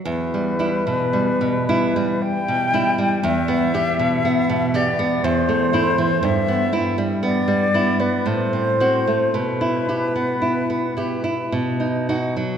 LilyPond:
<<
  \new Staff \with { instrumentName = "Flute" } { \time 3/4 \key e \minor \tempo 4 = 57 b'2 g''4 | e''4. d''8 c''4 | e''8. r16 d''8. b'16 c''4 | b'2 r4 | }
  \new Staff \with { instrumentName = "Nylon-string guitar" } { \time 3/4 \key e \minor e,16 g16 <g e'>16 b,16 g16 b,16 <g e'>16 g8 b,16 <g e'>16 g16 | e,16 b16 <b g'>16 b,16 b16 b,16 <b g'>16 b16 e,16 a16 <a e'>16 e16 | g,16 b16 <b e'>16 g16 b16 g16 <b e'>16 b16 a,16 c'16 <c' fis'>16 a16 | b,16 e'16 <e' g'>16 b16 e'16 b16 <e' g'>16 e'16 b,16 dis'16 <dis' fis'>16 fis16 | }
>>